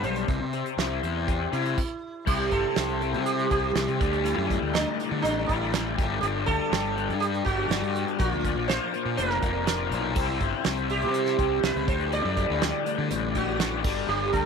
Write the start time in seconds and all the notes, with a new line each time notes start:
Already playing: B3 D4 G4 D5 F#5 B5
0.03 B1 G3 C5, closed hi-hat
0.16 closed hi-hat
0.28 C2 C3 G4 E5 C6, kick, closed hi-hat
0.40 C3
0.53 C4, closed hi-hat
0.66 closed hi-hat
0.77 C2 E4, snare, closed hi-hat
1.03 E2 C5, closed hi-hat
1.27 G4, kick, closed hi-hat
1.53 C3 E4, closed hi-hat
1.65 closed hi-hat
1.78 kick, crash
2.26 C2 C3 G3 C4 E4 G4 C5 E5 C6, kick, crash
2.51 G1 C4 E4 G4 A4 C5, kick, closed hi-hat
2.76 C2 C4 E4 G4 C5, snare, closed hi-hat
2.89 closed hi-hat
3.01 C4 E4 G4 C5, closed hi-hat
3.13 C3, closed hi-hat
3.25 G4, closed hi-hat
3.39 closed hi-hat
3.50 C2 C4 E4 G4 C5, kick, closed hi-hat
3.75 C2 C3 G3 C4 E4 G4 C5, snare, closed hi-hat
3.88 C3, closed hi-hat
4.00 D2 A2 D3 G3 A4 D5 A5 D6, kick, closed hi-hat
4.13 closed hi-hat
4.24 D2 A2 D3 G3 E4, closed hi-hat
4.38 F#2
4.49 A2 D3 G3, kick, closed hi-hat
4.62 D2
4.74 D2 A2 D3 G3 D4, snare, closed hi-hat
4.99 A2 D3 G3, closed hi-hat
5.11 D3
5.22 A1 D4, closed hi-hat
5.46 A1 D3 G3 E4, kick, closed hi-hat
5.50 A2
5.73 D2 A2 D3 G3, snare, closed hi-hat
5.97 G1 G2 D3 G3 D4 G4 A4, kick, closed hi-hat
6.21 G1 G2 D3 G3 D4 G4, closed hi-hat
6.46 D2 G3 D4 G4 A4, kick, closed hi-hat
6.71 G1 D3 G3 D4 G4, snare, closed hi-hat
6.85 closed hi-hat
6.96 G3 D4 G4, closed hi-hat
7.09 G2, closed hi-hat
7.20 G4, closed hi-hat
7.34 closed hi-hat
7.45 G1 G3 D4 F#4 G4, kick, closed hi-hat
7.70 G1 G2 D3 G3 D4 G4, snare, closed hi-hat
7.82 G2, closed hi-hat
7.95 closed hi-hat
8.08 closed hi-hat
8.19 A#1 A#2 F3 A#3 D4 F4 A#4 F5, kick, closed hi-hat
8.32 D2
8.45 A#3 D4 F4 A#4, kick, closed hi-hat
8.56 A#1
8.68 A#3 D4 F4 A#4 C5, snare, closed hi-hat
8.94 A#3 D4 F4 A#4, closed hi-hat
9.05 A#2
9.17 F1 A#4, closed hi-hat
9.31 snare
9.42 F1 A#3 D4 F4 A#4, kick, closed hi-hat
9.66 A#2 F3 A#3 D4 F4 A#4, snare, closed hi-hat
9.91 B1, closed hi-hat
10.15 C2 C3 G3 C4 E4 G4 C5 E5 E6, kick, crash
10.40 G1 C4 E4 G4 C5, kick, closed hi-hat
10.65 C2 C4 E4 G4 C5, snare, closed hi-hat
10.77 closed hi-hat
10.89 C4 E4 G4 C5, closed hi-hat
11.02 C3, closed hi-hat
11.14 closed hi-hat
11.26 snare, closed hi-hat
11.38 C2 C4 E4 G4 C5, kick, closed hi-hat
11.63 C2 C3 G3 C4 E4 G4 B4 C5, snare, closed hi-hat
11.76 C#2, closed hi-hat
11.87 D2 A2 D3 G3 A4 C5 D5 D6, kick, closed hi-hat
12.00 closed hi-hat
12.12 D2 A2 D3 G3 D5, closed hi-hat
12.25 F#2
12.37 A2 D3 G3, kick, closed hi-hat
12.50 D2
12.61 D2 A2 D3 G3, snare, closed hi-hat
12.85 A2 D3 G3, closed hi-hat
12.98 D3
13.11 A1, closed hi-hat
13.34 A1 A2 D3 G3 F#4, kick, closed hi-hat
13.58 D2 A2 D3 G3, snare, closed hi-hat
13.83 G1 G2 D3 G3 D4 G4 A4, kick, crash
14.08 G1 G2 D3 G3 D4 G4
14.32 D2 G3 D4 G4 A4, kick, closed hi-hat